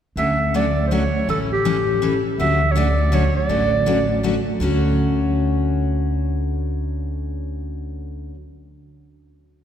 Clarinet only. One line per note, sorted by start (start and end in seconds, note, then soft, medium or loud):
0.19 0.52 E5 medium
0.56 0.84 D5 medium
0.87 0.95 C5 medium
0.93 1.29 C#5 medium
1.29 1.39 A4 medium
1.53 2.21 G4 medium
2.40 2.73 E5 medium
2.71 2.79 C#5 medium
2.77 3.16 D5 medium
3.14 3.36 C#5 medium
3.36 4.20 D5 medium